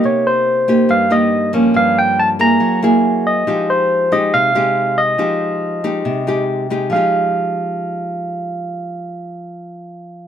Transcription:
<<
  \new Staff \with { instrumentName = "Tine electric piano" } { \time 4/4 \key f \minor \tempo 4 = 140 des''8 c''4. f''8 ees''4 r8 | f''8 g''8 a''8 bes''4 r4 ees''8~ | ees''8 c''4 ees''8 f''4. ees''8~ | ees''2. r4 |
f''1~ | f''1 | }
  \new Staff \with { instrumentName = "Nylon-string guitar" } { \time 4/4 \key f \minor << { <bes ees' g'>4. <bes ees' g'>4 <bes ees' g'>4 <f bes des'>8~ | <f bes des'>4. <bes e' aes'>4 <bes fes' aes'>4. | <aes ees' g'>4. <aes ees' g'>4 <aes ees' g'>4. | <aes ees' g'>4. <aes ees' g'>4 <aes ees' g'>4 <aes ees' g'>8~ |
<aes ees' g'>4 r2. | r1 | } \\ { c2 g,2 | g,2 ges2 | f2 c2 | f2 c2 |
<f aes ees' g'>1~ | <f aes ees' g'>1 | } >> }
>>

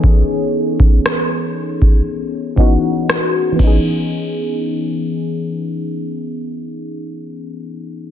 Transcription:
<<
  \new Staff \with { instrumentName = "FM electric piano" } { \time 4/4 \key cis \minor \tempo 4 = 59 <e b cis' dis' gis'>4 r4. <e b cis' dis' fis'>4 <e b cis' dis' gis'>8~ | <e b cis' dis' gis'>1 | }
  \new DrumStaff \with { instrumentName = "Drums" } \drummode { \time 4/4 bd8. bd16 ss8. bd16 r8 bd8 ss8 <cymc bd>8 | r4 r4 r4 r4 | }
>>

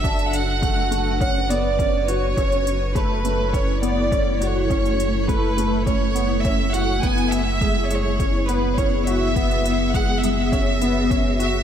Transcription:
<<
  \new Staff \with { instrumentName = "Violin section" } { \time 4/4 \key a \major \tempo 4 = 103 e''8 fis''4. fis''8 d''4 cis''8~ | cis''4 b'4 cis''8 d''4 cis''8~ | cis''4 b'4 cis''4 e''8 fis''8 | gis''8 e''4 cis''4 b'8 cis''8 e''8~ |
e''4 fis''8 e''2 e''8 | }
  \new Staff \with { instrumentName = "Ambient pad" } { \time 4/4 \key a \major << { <d' b'>1 | <a a'>1~ | <a a'>1 | <b gis'>1~ |
<b gis'>1 | } \\ { fis'1 | e'1~ | e'1 | e'1 |
fis'1 | } >> }
  \new Staff \with { instrumentName = "Felt piano" } { \time 4/4 \key a \major d'4 a8 a8 cis'8 b8 cis'8 fis'8 | cis'4 a8 a8 cis'8 b8 cis'8 fis'8 | cis'4 a8 a8 cis'8 b8 cis'8 fis'8 | b4 gis8 gis8 cis'8 b8 cis'8 fis'8 |
b4 gis8 gis8 cis'8 b8 cis'8 fis'8 | }
  \new Staff \with { instrumentName = "Analog synth bass" } { \clef bass \time 4/4 \key a \major fis,,1 | fis,,1~ | fis,,1 | fis,,1~ |
fis,,1 | }
  \new DrumStaff \with { instrumentName = "Drums" } \drummode { \time 4/4 <hh bd>16 hh16 hh8 <hh bd>8 hh8 <hh bd>8 hh8 <hh bd>8 hh8 | <hh bd>16 hh16 hh8 <hh bd>8 hh8 <hh bd>8 hh8 <hh bd>8 hh8 | <hh bd>16 hh16 hh8 <hh bd>8 hh8 <hh bd>8 hh8 <hh bd>8 hh8 | <hh bd>16 hh16 hh8 <hh bd>8 hh8 <hh bd>8 hh8 <hh bd>8 hh8 |
<hh bd>16 hh16 hh8 <hh bd>8 hh8 <hh bd>8 hh8 <hh bd>8 hh8 | }
>>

